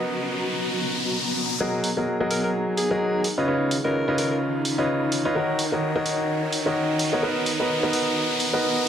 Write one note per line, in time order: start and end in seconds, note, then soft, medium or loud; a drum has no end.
0.00 1.58 B3 medium
0.00 1.60 B3 medium
0.00 0.42 C#4 medium
0.00 1.58 F#4 medium
0.00 2.26 F#4 medium
0.00 1.58 A#4 medium
0.00 1.58 B4 medium
0.00 1.58 D#5 medium
0.00 2.27 D#5 medium
0.00 3.24 A#5 medium
0.00 riser medium
1.60 1.87 F#3 medium
1.60 8.88 D#4 medium
1.60 1.87 F#4 medium
1.60 1.87 G#4 medium
1.60 1.87 A#4 medium
1.60 1.87 D#5 loud
1.60 riser medium
1.82 3.91 G#4 medium
1.82 open hi-hat loud
1.97 2.16 F#3 medium
1.97 2.16 F#4 medium
1.97 2.16 G#4 medium
1.97 2.16 A#4 medium
1.97 2.16 D#5 medium
2.20 2.88 F#3 loud
2.20 2.88 F#4 medium
2.20 2.88 G#4 medium
2.20 2.88 A#4 medium
2.20 2.88 D#5 loud
2.31 2.39 A#4 medium
2.31 open hi-hat loud
2.44 2.50 A#4 medium
2.77 3.24 G#4 medium
2.77 open hi-hat loud
2.91 3.23 F#3 medium
2.91 3.23 F#4 medium
2.91 3.23 G#4 medium
2.91 3.23 A#4 medium
2.91 3.23 D#5 loud
3.24 open hi-hat loud
3.38 3.46 C#3 medium
3.38 3.46 F4 medium
3.38 3.46 B4 medium
3.38 3.46 C#5 medium
3.38 3.46 D#5 loud
3.48 3.74 C#3 medium
3.48 3.74 F4 medium
3.48 3.74 B4 medium
3.48 3.74 C#5 medium
3.48 3.74 D#5 loud
3.70 7.98 C#5 medium
3.70 open hi-hat loud
3.84 4.04 C#3 medium
3.84 4.04 F4 medium
3.84 4.16 A#4 medium
3.84 4.04 B4 medium
3.84 4.04 C#5 medium
3.84 4.04 D#5 medium
4.08 4.75 C#3 loud
4.08 4.75 F4 medium
4.08 4.75 B4 medium
4.08 4.75 C#5 medium
4.08 4.75 D#5 loud
4.18 4.27 A#4 medium
4.18 open hi-hat loud
4.31 4.38 A#4 medium
4.65 open hi-hat loud
4.78 5.22 C#3 medium
4.78 5.22 F4 medium
4.78 5.22 B4 medium
4.78 5.22 C#5 medium
4.78 5.22 D#5 loud
5.12 open hi-hat loud
5.25 5.34 F4 medium
5.25 5.34 B4 medium
5.25 5.34 C#5 medium
5.25 5.34 D#5 loud
5.35 5.62 D#3 medium
5.35 5.62 F#4 medium
5.35 5.62 A#4 medium
5.35 5.62 C#5 medium
5.35 5.62 D#5 loud
5.51 8.88 F#5 medium
5.59 open hi-hat loud
5.72 5.91 D#3 medium
5.72 5.91 F#4 medium
5.72 5.91 A#4 medium
5.72 5.91 C#5 medium
5.72 5.91 D#5 medium
5.95 6.63 D#3 loud
5.95 6.63 F#4 medium
5.95 6.63 A#4 medium
5.95 6.63 C#5 medium
5.95 6.63 D#5 loud
6.06 open hi-hat loud
6.11 8.88 A#5 medium
6.52 open hi-hat loud
6.66 7.09 D#3 medium
6.66 7.09 F#4 medium
6.66 7.09 A#4 medium
6.66 7.09 C#5 medium
6.66 7.09 D#5 loud
6.99 open hi-hat loud
7.13 7.21 B3 medium
7.13 7.21 F#4 medium
7.13 7.21 A#4 medium
7.13 7.21 C#5 medium
7.13 7.21 D#5 loud
7.23 7.49 B3 medium
7.23 7.49 F#4 medium
7.23 7.49 A#4 medium
7.23 7.49 B4 medium
7.23 7.49 D#5 loud
7.46 open hi-hat loud
7.59 7.79 B3 medium
7.59 7.79 F#4 medium
7.59 7.79 A#4 medium
7.59 7.79 B4 medium
7.59 7.79 D#5 medium
7.83 8.50 B3 loud
7.83 8.50 F#4 medium
7.83 8.50 A#4 medium
7.83 8.50 B4 medium
7.83 8.50 D#5 loud
7.93 open hi-hat loud
8.40 open hi-hat loud
8.53 8.88 B3 medium
8.53 8.88 F#4 medium
8.53 8.88 A#4 medium
8.53 8.88 B4 medium
8.53 8.88 D#5 loud